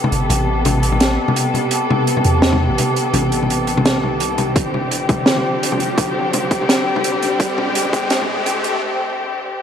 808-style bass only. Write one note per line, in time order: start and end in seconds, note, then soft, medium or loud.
0.12 0.29 G1 medium
0.30 1.18 A1 loud
2.25 2.69 E2 loud
2.70 2.78 A1 medium
3.14 4.04 A1 loud
4.03 4.55 C2 medium
4.56 5.44 G1 loud
5.80 5.97 F1 medium
5.98 6.86 G1 medium
7.93 8.37 E2 loud
8.38 8.46 G1 medium